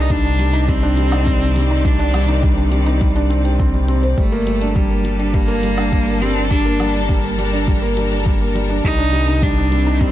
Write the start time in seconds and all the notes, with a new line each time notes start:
Already playing: C2 C3 G3 D4 D#4 A4 A#4 D5
0.01 D#4
0.10 G3 D4, kick, closed hi-hat
0.25 D4, closed hi-hat
0.35 C4
0.39 G3, closed hi-hat
0.49 D#3
0.53 D#4, closed hi-hat
0.68 G3 C4, kick, closed hi-hat
0.83 D4, closed hi-hat
0.97 G3, closed hi-hat
1.12 D#4, closed hi-hat, low woodblock
1.26 G3, kick, closed hi-hat
1.41 D4, closed hi-hat
1.56 G3, closed hi-hat
1.70 D#4, closed hi-hat
1.85 G3 D4, kick, closed hi-hat
1.99 D4, closed hi-hat
2.14 G3, closed hi-hat, low woodblock
2.28 D#4, closed hi-hat
2.42 G3, kick, closed hi-hat
2.57 D4, closed hi-hat
2.72 G3, closed hi-hat
2.86 D#4, closed hi-hat
3.01 G3, kick, closed hi-hat
3.16 D4, closed hi-hat
3.30 C4, closed hi-hat
3.45 G4, closed hi-hat
3.59 C4, kick, closed hi-hat
3.74 G3, closed hi-hat
3.88 C4, closed hi-hat
4.03 C5, closed hi-hat
4.18 G1 G3 A3, kick, closed hi-hat
4.32 A#3, closed hi-hat
4.47 G3 A4, closed hi-hat
4.61 D4, closed hi-hat
4.76 G3, kick, closed hi-hat
4.90 A#3 D4, closed hi-hat
5.04 G3, closed hi-hat
5.19 D4, closed hi-hat
5.33 G3 A#3, kick, closed hi-hat
5.48 A#3, closed hi-hat
5.62 G3, closed hi-hat
5.77 D4, closed hi-hat, low woodblock
5.92 G3, kick, closed hi-hat
6.07 A#3, closed hi-hat
6.15 A#4
6.21 G3 C4, closed hi-hat
6.36 D4, closed hi-hat
6.50 G3 D4, kick, closed hi-hat
6.65 A#3, closed hi-hat
6.80 G3, closed hi-hat, low woodblock
6.94 D4, closed hi-hat
7.09 G3, kick, closed hi-hat
7.24 A#3, closed hi-hat
7.38 G3, closed hi-hat
7.53 D4, closed hi-hat
7.68 G3, kick, closed hi-hat
7.82 A#3, closed hi-hat
7.97 G3, closed hi-hat
8.12 D4, closed hi-hat
8.26 G3, kick, closed hi-hat
8.41 A#3, closed hi-hat
8.55 G3, closed hi-hat
8.69 D4, closed hi-hat
8.84 C2 C3 G3 D#4, kick, closed hi-hat
8.95 C4 D4
8.99 closed hi-hat
9.11 D#3 G3, closed hi-hat
9.28 D#4, closed hi-hat
9.43 G3 D4, kick, closed hi-hat
9.57 D4, closed hi-hat
9.72 G3, closed hi-hat
9.87 D#4, closed hi-hat
10.01 G3 C4, kick, closed hi-hat